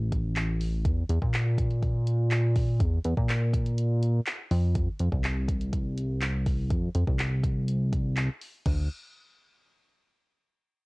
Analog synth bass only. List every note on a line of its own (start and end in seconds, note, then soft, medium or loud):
0.00 0.87 A1 loud
0.85 1.04 E2 loud
1.10 1.19 E2 loud
1.22 2.82 A#2 medium
2.80 2.99 E2 loud
3.05 3.14 E2 loud
3.17 4.20 A#2 loud
4.51 4.89 F2 loud
5.00 5.09 F2 medium
5.12 6.72 C2 loud
6.70 6.89 F2 loud
6.95 7.04 F2 medium
7.07 8.29 C2 loud
8.66 8.88 D2 loud